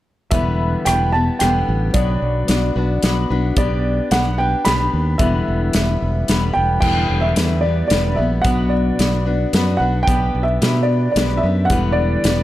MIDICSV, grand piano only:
0, 0, Header, 1, 2, 480
1, 0, Start_track
1, 0, Key_signature, 1, "minor"
1, 0, Tempo, 542005
1, 285, Time_signature, 3, 2, 24, 8
1, 11008, End_track
2, 0, Start_track
2, 0, Title_t, "Grand piano"
2, 0, Program_c, 0, 0
2, 270, Note_on_c, 0, 76, 77
2, 756, Note_on_c, 0, 79, 83
2, 773, Note_off_c, 0, 76, 0
2, 984, Note_off_c, 0, 79, 0
2, 996, Note_on_c, 0, 81, 80
2, 1224, Note_off_c, 0, 81, 0
2, 1233, Note_on_c, 0, 79, 75
2, 1686, Note_off_c, 0, 79, 0
2, 1715, Note_on_c, 0, 74, 67
2, 2886, Note_off_c, 0, 74, 0
2, 3167, Note_on_c, 0, 74, 73
2, 3614, Note_off_c, 0, 74, 0
2, 3645, Note_on_c, 0, 78, 83
2, 3869, Note_off_c, 0, 78, 0
2, 3882, Note_on_c, 0, 79, 79
2, 4115, Note_on_c, 0, 83, 87
2, 4132, Note_off_c, 0, 79, 0
2, 4588, Note_on_c, 0, 76, 78
2, 4616, Note_off_c, 0, 83, 0
2, 5762, Note_off_c, 0, 76, 0
2, 5787, Note_on_c, 0, 79, 73
2, 6013, Note_off_c, 0, 79, 0
2, 6026, Note_on_c, 0, 79, 80
2, 6383, Note_on_c, 0, 76, 72
2, 6407, Note_off_c, 0, 79, 0
2, 6738, Note_on_c, 0, 74, 68
2, 6766, Note_off_c, 0, 76, 0
2, 6962, Note_off_c, 0, 74, 0
2, 6975, Note_on_c, 0, 74, 67
2, 7222, Note_on_c, 0, 76, 68
2, 7238, Note_off_c, 0, 74, 0
2, 7453, Note_on_c, 0, 78, 81
2, 7457, Note_off_c, 0, 76, 0
2, 7696, Note_on_c, 0, 74, 68
2, 7717, Note_off_c, 0, 78, 0
2, 8635, Note_off_c, 0, 74, 0
2, 8653, Note_on_c, 0, 78, 77
2, 8881, Note_on_c, 0, 79, 85
2, 8917, Note_off_c, 0, 78, 0
2, 9236, Note_off_c, 0, 79, 0
2, 9238, Note_on_c, 0, 76, 77
2, 9587, Note_on_c, 0, 74, 69
2, 9633, Note_off_c, 0, 76, 0
2, 9830, Note_off_c, 0, 74, 0
2, 9844, Note_on_c, 0, 74, 66
2, 10073, Note_on_c, 0, 76, 78
2, 10112, Note_off_c, 0, 74, 0
2, 10319, Note_on_c, 0, 78, 80
2, 10347, Note_off_c, 0, 76, 0
2, 10561, Note_on_c, 0, 74, 89
2, 10590, Note_off_c, 0, 78, 0
2, 11008, Note_off_c, 0, 74, 0
2, 11008, End_track
0, 0, End_of_file